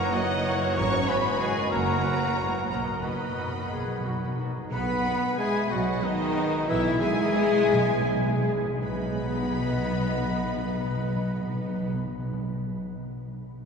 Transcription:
Already playing: bassoon E3, cello section A#3, clarinet F#4, oboe A#4, viola section C#5, flute F#5, violin section A#5
0.13 cello section F#3, french horn section A#3 E4, trumpet F#4, oboe F#4, flute C#5, viola section D#5, violin section F#5
0.47 french horn section A#3 E4, trumpet F#4, viola section C#5
0.76 double bass section G#1, cello section C#4, clarinet F#4, oboe C#5, flute A#5, violin section C#6
1.07 french horn section G#3 D#4, cello section B3, trumpet F#4, oboe B4, flute G#5, violin section B5
1.40 bassoon D#3, french horn section G#3 D#4, cello section G#3, trumpet F#4, oboe G#4, viola section B4, flute D#5, violin section G#5
1.70 double bass section F#1, timpani F#2, cello section A#3, oboe A#4, viola section C#5, flute F#5, violin section A#5
2.03 french horn section F#3 D#4, trumpet F#4, viola section B4
2.35 double bass section F#1, bassoon E3, french horn section F#3 E4, trumpet F#4, viola section C#5
2.68 double bass section B1, timpani B2, bassoon D#3, cello section A#3, clarinet F#4, oboe A#4, viola section D#5, flute F#5, violin section A#5
2.76 timpani B2
2.92 timpani B2
3.01 timpani B2, french horn section F#3 D#4, cello section B3, trumpet F#4, oboe B4, clarinet B4, flute F#5, violin section B5
3.08 timpani B2
3.17 timpani B2
3.25 timpani B2
3.33 timpani B2
3.37 timpani B2, french horn section F#3 D#4, trumpet F#4
3.48 timpani B2
3.55 timpani B2
3.63 timpani B2
3.70 double bass section B1, timpani B2, clarinet G#4
3.78 timpani B2
3.86 timpani B2
3.93 timpani B2
4.01 timpani B2, french horn section F#3 D#4, clarinet F#4
4.05 timpani B2, trumpet F#4
4.17 timpani B2
4.25 timpani B2
4.34 timpani B2, french horn section F#3 D#4
4.39 timpani B2, clarinet D#4, trumpet F#4
4.49 timpani B2
4.57 timpani B2
4.71 double bass section B1, timpani B2, french horn section B3, cello section B3, clarinet B4, viola section B4, flute F#5, violin section B5, oboe B5
5.07 violin section B3 D#4
5.39 cello section G#3, french horn section G#3, violin section B3 D#4 G#5, clarinet G#4, viola section G#4, flute E5, oboe G#5
5.71 double bass section B1, cello section F#3, french horn section F#3, clarinet F#4, viola section F#4, flute D#5, violin section F#5, oboe F#5
6.02 cello section D#3, french horn section D#3, violin section B3 D#4 D#5, clarinet D#4, viola section D#4, flute B4, oboe D#5
6.37 violin section B3 D#4
6.68 double bass section B1, timpani B2, french horn section E3, cello section E3, viola section E4, clarinet E4, flute B4, violin section E5, oboe E5
6.75 timpani B2
6.83 timpani B2
6.91 timpani B2
6.98 timpani B2, french horn section G#3, cello section G#3, violin section B3 E4 G#5, clarinet G#4, viola section G#4, oboe G#5
7.02 flute E5
7.14 timpani B2
7.22 timpani B2
7.30 timpani B2
7.35 timpani B2, violin section B3 E4
7.45 timpani B2
7.52 timpani B2
7.60 timpani B2
7.67 double bass section B1, timpani B2
7.75 timpani B2
7.83 timpani B2
7.91 timpani B2
7.99 timpani B2, violin section B3
8.03 violin section E4
8.08 timpani B2
8.17 timpani B2
8.27 timpani B2
8.36 timpani B2
8.43 timpani B2, violin section B3 E4
8.54 timpani B2
8.65 timpani B2
8.82 double bass section B1, timpani B2, french horn section B3, viola section B3, cello section B3, violin section B3 D#4 B5, clarinet B4, oboe B4, flute D#5
8.88 timpani B2
8.95 timpani B2
9.02 timpani B2
9.08 timpani B2
9.15 timpani B2
9.21 timpani B2
9.28 timpani B2
9.34 timpani B2
9.40 timpani B2
9.47 timpani B2
9.54 timpani B2
9.60 timpani B2
9.66 timpani B2
9.73 timpani B2
9.79 timpani B2
9.86 timpani B2
9.93 timpani B2
9.99 timpani B2
10.05 timpani B2
10.12 timpani B2
10.18 timpani B2
10.25 timpani B2
10.31 timpani B2
10.37 timpani B2
10.44 timpani B2
10.51 timpani B2
10.58 timpani B2
10.64 timpani B2
10.71 timpani B2
10.77 timpani B2
10.84 timpani B2
10.90 timpani B2
10.97 timpani B2
11.04 timpani B2
11.10 timpani B2
11.16 timpani B2
11.22 timpani B2
11.29 timpani B2
11.35 timpani B2
11.41 timpani B2
11.47 timpani B2
11.54 timpani B2
11.61 timpani B2
11.68 timpani B2
11.75 timpani B2
11.81 timpani B2
11.88 timpani B2
11.94 timpani B2
12.00 timpani B2
12.06 timpani B2
12.13 timpani B2
12.19 timpani B2
12.26 timpani B2
12.33 timpani B2
12.39 timpani B2
12.46 timpani B2
12.52 timpani B2

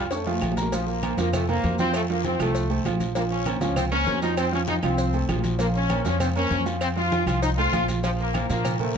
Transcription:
Already playing: upright bass F2
0.11 trombone section A3, upright piano C#4 C#5 C#6, cowbell, high conga, high timbale, long guiro, maracas
0.26 upright piano F3 F4 F5, high conga, low agogo, maracas
0.32 low timbale
0.41 upright bass A#1, cowbell, high conga, low agogo, short guiro, claves, maracas
0.52 low timbale
0.57 upright piano A#3 A#4 A#5, cowbell, high conga, short guiro, maracas
0.62 low timbale
0.72 trombone section F3, upright piano F3 F4 F5, cowbell, low agogo, long guiro, maracas
0.88 trombone section A#3, high conga, maracas
1.03 upright piano A#3 A#4 C5, cowbell, high conga, low agogo, short guiro, claves, maracas
1.17 upright bass F2, upright piano F3 F4 F5, trombone section A#3, cowbell, short guiro, maracas
1.33 trombone section A3, cowbell, high conga, low conga, low agogo, long guiro, claves, maracas
1.48 upright piano A#3 A#4 C5, trombone section A#3, high conga, low conga, low agogo, maracas
1.63 upright bass F2, upright piano A#3 A#4 C5, cowbell, high conga, low timbale, short guiro, maracas
1.79 upright piano F3 F4 F5, trombone section C4, high conga, low agogo, short guiro, maracas
1.94 trombone section A3, cowbell, low agogo, long guiro, claves, maracas
2.09 upright piano F3 F4 F5, trombone section A#3, high conga, maracas
2.24 trombone section C4, cowbell, high conga, low agogo, short guiro, maracas
2.39 upright bass C2, upright piano F3 F4 F5, trombone section A3, cowbell, high conga, low agogo, short guiro, claves, maracas
2.55 cowbell, high conga, long guiro, maracas
2.70 upright piano A3 A4 C5, high conga, low agogo, maracas
2.85 upright bass A#1, upright piano F3 F4 F5, cowbell, high conga, low timbale, low agogo, short guiro, claves, maracas
3.00 cowbell, high conga, short guiro, maracas
3.15 upright piano F3 F4 F5, trombone section A#3, cowbell, high conga, low agogo, long guiro, maracas
3.31 trombone section C#4, high conga, maracas
3.46 upright piano A#3 A#4 C5, cowbell, high conga, low agogo, short guiro, claves, maracas
3.61 upright bass C#2, upright piano F3 F4 F5, trombone section C#4, cowbell, high conga, short guiro, maracas
3.76 trombone section C4, cowbell, high conga, low conga, low agogo, long guiro, claves, maracas
3.92 upright piano A#3 A#4 C5, trombone section C#4, high conga, low agogo, maracas
4.06 upright bass F2, upright piano A#3 A#4 C5, cowbell, high conga, low timbale, short guiro, maracas
4.22 upright piano F3 F4 F5, trombone section D#4, low agogo, short guiro, maracas
4.37 trombone section C4, cowbell, high conga, low agogo, long guiro, claves, maracas
4.52 upright piano F3 F4 F5, trombone section C#4, high conga, maracas
4.68 trombone section D#4, cowbell, high conga, low agogo, short guiro, maracas
4.83 upright bass C2, upright piano F3 F4 F5, trombone section C4, cowbell, low agogo, short guiro, claves, maracas
4.98 cowbell, long guiro, maracas
5.13 upright piano A3 A4 C5, high conga, low agogo, maracas
5.29 upright bass A#1, upright piano F3 F4 F5, cowbell, high conga, low timbale, low agogo, short guiro, claves, maracas
5.44 cowbell, high conga, short guiro, maracas
5.59 upright piano F3 F4 F5, trombone section A#3, cowbell, low agogo, long guiro, maracas
5.75 trombone section C#4, maracas
5.90 upright piano A#3 A#4 C5, cowbell, high conga, low agogo, short guiro, claves, maracas
6.05 upright bass F2, upright piano F3 F4 F5, trombone section C#4, cowbell, high conga, short guiro, maracas
6.20 trombone section C4, cowbell, high conga, low conga, low agogo, long guiro, claves, maracas
6.35 upright piano A#3 A#4 C5, trombone section C#4, high conga, low agogo, maracas
6.50 upright bass F2, upright piano A#3 A#4 C5, cowbell, high conga, short guiro, maracas
6.66 upright piano F3 F4 F5, low agogo, short guiro, maracas
6.81 trombone section C4, cowbell, high conga, low agogo, long guiro, claves, maracas
6.96 upright piano F3 F4 F5, trombone section F4, high conga, maracas
7.12 cowbell, high conga, low agogo, short guiro, maracas
7.26 upright bass C2, upright piano F3 F4 F5, trombone section F4, cowbell, high conga, low agogo, short guiro, claves, maracas
7.42 trombone section D#4, cowbell, high conga, long guiro, maracas
7.57 upright piano A3 A4 C5, trombone section F4, high conga, low agogo, maracas
7.72 upright bass A#1, upright piano F3 F4 F5, cowbell, high conga, low timbale, low agogo, short guiro, claves, maracas
7.88 cowbell, high conga, short guiro, maracas
8.03 upright piano F3 F4 F5, trombone section F3, cowbell, low agogo, long guiro, maracas
8.19 trombone section A#3, high conga, maracas
8.34 upright piano A#3 A#4 C5, cowbell, high conga, low agogo, short guiro, claves, maracas
8.49 upright bass A#2, upright piano F3 F4 F5, trombone section A#3, cowbell, high conga, short guiro, maracas
8.65 cowbell, high conga, low conga, low agogo, long guiro, claves, maracas
8.79 trombone section A3, upright piano A#3 A#4 C5, high conga, low conga, low agogo, maracas

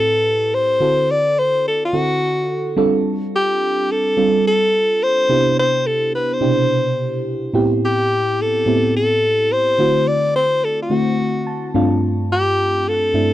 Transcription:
Already playing: fm electric piano A2 C4 E4 G4 B4
0.00 alto saxophone A4
0.54 alto saxophone C5
0.80 fm electric piano D3 C4 E4 F#4 A4
1.11 alto saxophone D5
1.39 alto saxophone C5
1.68 alto saxophone A4
1.85 alto saxophone F#4
1.93 fm electric piano D3 C4 E4 F#4 A4
2.76 fm electric piano G3 C4 D4 F4 A4
3.36 alto saxophone G4
3.91 alto saxophone A4
4.17 fm electric piano G3 C4 D4 F4 A4
4.47 alto saxophone A4
5.03 alto saxophone C5
5.29 fm electric piano C3 B3 D4 E4 G4
5.59 alto saxophone C5
5.87 alto saxophone A4
6.15 alto saxophone B4
6.33 alto saxophone C5
6.41 fm electric piano B2 C3 D4 E4 G4
7.53 fm electric piano A2 B3 C4 E4 G4
7.85 alto saxophone G4
8.41 alto saxophone A4
8.66 fm electric piano A2 B3 C4 E4 G4
8.96 alto saxophone A4
9.52 alto saxophone C5
9.78 fm electric piano D3 A3 C4 E4 F#4
10.08 alto saxophone D5
10.36 alto saxophone C5
10.64 alto saxophone A4
10.82 alto saxophone F#4
10.90 fm electric piano D3 A3 C4 E4 F#4
11.47 fm electric piano A5
11.74 fm electric piano G2 A3 C4 D4 F4
12.32 alto saxophone G4
12.88 alto saxophone A4
13.14 fm electric piano G2 A3 C4 D4 E4

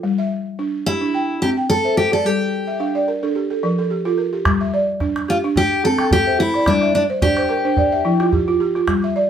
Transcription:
0.03 balafon G3
0.18 balafon E5
0.59 balafon D4
0.86 steel-string acoustic guitar E4, balafon G4
1.01 balafon D4
1.14 balafon G5
1.42 balafon C4, steel-string acoustic guitar G4
1.57 balafon G5
1.70 steel-string acoustic guitar A4
1.85 balafon C5 E5
1.97 steel-string acoustic guitar G4
2.12 steel-string acoustic guitar A4, balafon D5
2.25 balafon G3, steel-string acoustic guitar G4
2.67 balafon E5
2.80 balafon D4 F5
2.95 balafon D5
3.08 balafon A#4
3.23 balafon D4 A4
3.35 balafon G4
3.50 balafon A4
3.63 balafon F3 A#4
3.78 balafon A4
3.90 balafon G4
4.05 balafon F4 A4
4.18 balafon A#4
4.33 balafon G4
4.45 balafon G3, calabash thump, calabash click
4.61 balafon E5
4.74 balafon D5
5.00 balafon D4, calabash thump, calabash click
5.16 calabash click
5.28 steel-string acoustic guitar F4, balafon G4, calabash click
5.44 balafon D4
5.56 steel-string acoustic guitar G4, balafon G5, calabash thump
5.84 balafon C4, steel-string acoustic guitar A4
5.99 balafon G5, calabash click
6.11 steel-string acoustic guitar G4, calabash thump
6.27 balafon C5 E5
6.40 steel-string acoustic guitar E4
6.54 balafon D5, calabash click
6.66 balafon G3, steel-string acoustic guitar D4, calabash thump, calabash click
6.82 balafon E5, calabash click
6.94 steel-string acoustic guitar D4, balafon D5
7.10 balafon C5
7.22 balafon D4 D5, steel-string acoustic guitar G4, calabash thump, calabash click
7.37 balafon C5, calabash click
7.49 balafon A#4, calabash click
7.65 balafon D4 C5
7.77 balafon D5, calabash thump
7.92 balafon E5
8.05 balafon F3 E4
8.20 balafon F4, calabash click
8.32 balafon G4, calabash thump
8.48 balafon F4
8.60 balafon G4
8.75 balafon F4, calabash click
8.88 balafon G3, calabash thump, calabash click
9.03 balafon E5, calabash click
9.16 balafon D5

